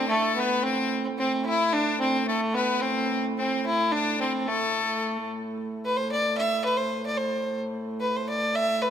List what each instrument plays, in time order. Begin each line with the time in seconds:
Already playing: hurdy-gurdy A2, shawm C4
0.09 fiddle A3, shawm A4
0.36 fiddle B3
0.40 shawm B4
0.63 fiddle C4, shawm C4
1.18 hurdy-gurdy A2, fiddle C4, shawm C4
1.46 fiddle E4, shawm E4
1.73 fiddle D4, shawm D4
2.00 fiddle C4, shawm C4
2.28 fiddle A3, shawm A4
2.54 fiddle B3, shawm B4
2.81 shawm C4, fiddle C4
3.38 fiddle C4, shawm C4
3.66 fiddle E4
3.92 fiddle D4, shawm D4
4.21 shawm C4, fiddle C4
4.46 fiddle A3, shawm A4
5.57 hurdy-gurdy A2
5.85 fiddle B4
5.97 fiddle C5
6.12 fiddle D5
6.38 fiddle E5
6.65 fiddle B4
6.77 fiddle C5
7.06 fiddle D5
7.17 fiddle C5
8.01 fiddle B4
8.16 fiddle C5
8.29 fiddle D5
8.56 fiddle E5
8.82 fiddle B4